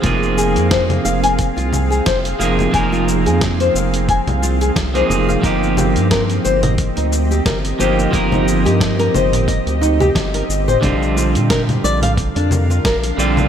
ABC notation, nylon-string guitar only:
X:1
M:4/4
L:1/16
Q:"Swing 16ths" 1/4=89
K:Fdor
V:1 name="Nylon-string guitar"
F2 A2 c z f a z F z A c z f z | a F z A z c f z a z F A z c z f | E2 G2 B z c e z E z G B z c z | e E z G z B c z e z E G z B z c |
D2 F2 B z d f z D z F B z d z |]